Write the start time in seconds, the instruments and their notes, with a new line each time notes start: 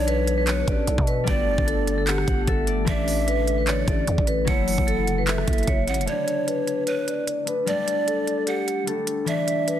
Already playing: 808-style bass B1, ambient pad D3 B3 F#4 A4, harp A3 B3 D4 E4, pan flute C#5
0.07 vibraphone B4, closed hi-hat
0.27 closed hi-hat
0.38 vibraphone B4
0.47 pan flute B4, vibraphone C#5, clap, closed hi-hat
0.68 808-style bass A1, vibraphone D5, kick, closed hi-hat
0.87 808-style bass B1, closed hi-hat
0.98 808-style bass B2, kick
1.07 vibraphone B4, closed hi-hat
1.24 808-style bass G1, ambient pad D3 A3 G4, harp G3 A3, pan flute D5, vibraphone D5, kick, closed hi-hat
1.30 harp D4
1.58 808-style bass G1, kick
1.67 vibraphone A4, closed hi-hat
1.87 closed hi-hat
1.98 vibraphone A4
2.07 vibraphone G4, pan flute F#5, clap, closed hi-hat
2.18 cross-stick
2.27 808-style bass G1, harp F#5, kick, closed hi-hat
2.47 808-style bass G1, vibraphone A4, harp E5, kick, closed hi-hat
2.67 harp D5, closed hi-hat
2.85 808-style bass A1, harp E3 A3, ambient pad E4, vibraphone D5, pan flute E5, kick, closed hi-hat
2.90 harp D4
3.08 open hi-hat
3.28 vibraphone B4, closed hi-hat
3.47 closed hi-hat
3.58 vibraphone B4
3.67 vibraphone C#5, pan flute D5, clap, closed hi-hat
3.87 808-style bass A1, vibraphone D5, kick, closed hi-hat
4.07 808-style bass E2, closed hi-hat
4.18 808-style bass A1, kick
4.27 vibraphone B4, closed hi-hat
4.45 808-style bass F#1, ambient pad C#3 F#3, harp F#3 A3, vibraphone C#5, pan flute F#5, kick, closed hi-hat
4.50 harp E4
4.68 open hi-hat
4.78 808-style bass F#1, kick
4.87 vibraphone A4, closed hi-hat
5.07 closed hi-hat
5.18 vibraphone B4
5.27 vibraphone A4, pan flute E5, clap, closed hi-hat
5.38 cross-stick
5.48 808-style bass F#1, kick, closed hi-hat
5.53 closed hi-hat
5.58 closed hi-hat
5.63 closed hi-hat
5.67 808-style bass F#1, vibraphone C#5, kick, closed hi-hat
5.87 808-style bass A1, pan flute F#5, closed hi-hat
5.94 808-style bass F#1, closed hi-hat
6.01 closed hi-hat
6.06 harp A3 B3, pan flute C#5, vibraphone D5, closed hi-hat
6.11 harp D4
6.28 closed hi-hat
6.47 vibraphone B4, closed hi-hat
6.67 closed hi-hat
6.78 vibraphone B4
6.87 pan flute B4, vibraphone C#5, closed hi-hat
7.08 vibraphone D5, closed hi-hat
7.27 closed hi-hat
7.45 harp A3 B3 D4, vibraphone B4, closed hi-hat
7.65 harp G3 A3, pan flute D5, vibraphone D5, closed hi-hat
7.71 harp D4
7.88 closed hi-hat
8.07 vibraphone A4, closed hi-hat
8.27 closed hi-hat
8.38 vibraphone A4
8.47 vibraphone G4, pan flute F#5, closed hi-hat
8.68 closed hi-hat
8.86 harp G3 A3 D4, vibraphone A4, closed hi-hat
9.07 closed hi-hat
9.25 harp E3 A3, vibraphone D5, pan flute E5, closed hi-hat
9.30 harp D4
9.48 closed hi-hat
9.68 vibraphone B4, closed hi-hat